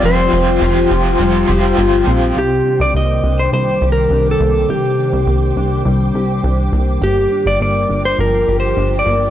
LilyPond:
<<
  \new Staff \with { instrumentName = "Ambient pad" } { \time 4/4 \key c \minor \tempo 4 = 103 << { c'''1 | d'''1~ | d'''1~ | d'''1 | } \\ { <f' c'' g''>1 | <ees c'' g''>1~ | <ees c'' g''>1 | <f' bes' g''>1 | } >> }
  \new Staff \with { instrumentName = "Electric slide guitar" } { \time 4/4 \key c \minor c''2. r4 | g'8. d''16 ees''8. c''16 \tuplet 3/2 { c''4 bes'8~ bes'8 a'4 } | g'2 r2 | g'8. d''16 d''8. c''16 \tuplet 3/2 { bes'4 c''8~ c''8 d''4 } | }
  \new Staff \with { instrumentName = "Overdriven electric guitar" } { \time 4/4 \key c \minor <f c' f' g' c''>8 <f' g' c''>8 <f c' f' g' c''>8 <f' g' c''>8 <c' f' g' c''>8 <f' g' c''>8 <f c' f' g' c''>8 <f' g' c''>8 | r1 | r1 | r1 | }
  \new Staff \with { instrumentName = "Clean electric guitar" } { \time 4/4 \key c \minor <f g c' f' g'>8 f'8 g'8 f'8 g8 g'8 f'8 c'8 | c8 d'8 bes8 d'8 g8 g'8 d'8 bes8 | c8 d'8 bes8 d'8 g8 g'8 d'8 bes8 | g,8 d'8 bes8 d'8 f8 g'8 d'8 bes8 | }
  \new Staff \with { instrumentName = "Analog synth bass" } { \clef bass \time 4/4 \key c \minor f,,8 f,,8 f,,8 f,,8 f,,8 f,,8 g,,8 bes,,8 | c,8 r16 c,16 c,8 c,8 c,8 c,8 c,8 c,8 | c,8 r16 c,16 c,8 c,8 c,8 c,8 c,8 c,8 | g,,8 r16 g,,16 g,,8 g,,8 g,,8 g,,8 g,,8 g,,8 | }
>>